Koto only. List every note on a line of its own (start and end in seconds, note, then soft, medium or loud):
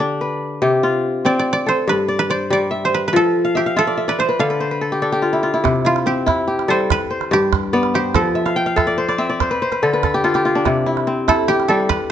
1.26 1.39 D5 medium
1.39 1.52 D5 medium
1.53 2.30 D5 medium
1.68 1.95 C5 medium
1.89 2.19 B4 medium
2.19 2.91 B4 medium
2.30 2.52 D5 medium
2.53 4.13 D5 medium
2.85 3.00 C5 medium
2.94 3.07 B4 medium
3.08 4.08 B4 medium
3.16 3.78 A4 medium
3.57 5.61 G4 medium
3.79 5.69 A4 medium
4.09 4.26 B4 medium
4.20 5.91 C5 medium
4.40 5.84 F5 medium
5.86 8.05 F4 medium
6.07 7.33 G4 medium
6.70 6.98 C5 medium
6.92 8.69 B4 medium
7.33 7.95 G4 medium
7.95 9.99 G4 medium
8.15 10.06 A4 medium
11.29 11.68 A4 medium
11.48 11.54 G4 medium
11.68 11.74 A4 medium
11.89 12.12 B4 medium